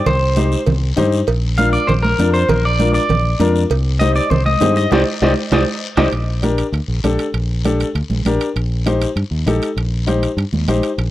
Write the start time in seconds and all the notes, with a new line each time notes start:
0.06 C2 C5, cowbell, low conga, long guiro
0.36 D#4 G4 C5, cowbell, high conga, short guiro
0.52 short guiro
0.66 C2, cowbell, low conga, long guiro
0.96 G2 D#4 G4 C5, cowbell, high conga, low conga, short guiro
1.12 short guiro
1.27 A#1, cowbell, long guiro
1.57 D4 F4 A#4 F5, cowbell, high conga, short guiro
1.73 D5, short guiro
1.87 A#1 C5, cowbell, low conga, long guiro
2.03 A#4, high conga
2.19 F2 D4 F4 A#4, cowbell, high conga, short guiro
2.34 C5, short guiro
2.49 A#1 A#4, cowbell, low conga, long guiro
2.65 D5
2.79 D4 F4 A#4, cowbell, high conga, short guiro
2.94 D5, short guiro
3.09 A#1, cowbell, low conga, long guiro
3.39 F2 D4 F4 A#4, cowbell, high conga, short guiro
3.56 short guiro
3.70 C2, cowbell, long guiro
3.99 D#4 G4 C5 D#5, cowbell, high conga, short guiro
4.15 D5, short guiro
4.30 C2 C5, cowbell, low conga, long guiro
4.46 D#5, high conga
4.60 G2 D#4 G4 C5, cowbell, high conga, low conga, low timbale, short guiro
4.76 D#5, short guiro
4.91 C2 D#4 G4 C5 D5 D#5, high conga, high timbale, long guiro
5.21 C2 D#4 G4 C5 D5 D#5, high conga, high timbale, long guiro
5.52 C2 D#4 G4 C5 D5 D#5, high conga, high timbale, long guiro
5.97 C2 D#4 G4 C5 D5 D#5, high conga, high timbale, long guiro
6.12 A#1, high timbale, long guiro
6.42 D4 G4 A#4, high conga, high timbale, short guiro
6.58 high timbale, short guiro
6.72 D2, high timbale, long guiro
6.88 A#1
7.04 A#1 D4 G4 A4, high conga, high timbale, short guiro
7.19 high timbale, short guiro
7.34 A#1, high timbale, long guiro
7.65 D4 G4 A4, high conga, high timbale, short guiro
7.80 high timbale, short guiro
7.95 D2, high timbale, long guiro
8.10 A#1, high conga
8.25 A#1 D4 G4 A#4, high conga, high timbale, short guiro
8.41 high timbale, short guiro
8.56 A#1, high timbale, long guiro
8.86 D#4 G4 C5, high conga, high timbale, short guiro
9.02 high timbale, short guiro
9.16 G2, high timbale, long guiro
9.31 D#2
9.46 A#1 D#4 G4 A4, high conga, high timbale, short guiro
9.62 high timbale, short guiro
9.76 A#1, high timbale, long guiro
10.07 D#4 G4 C5, high conga, high timbale, short guiro
10.23 high timbale, short guiro
10.37 G2, high timbale, long guiro
10.53 D#2, high conga
10.68 A#1 D#4 G4 C5, high conga, high timbale, short guiro
10.83 high timbale, short guiro
10.98 A#1, high timbale, long guiro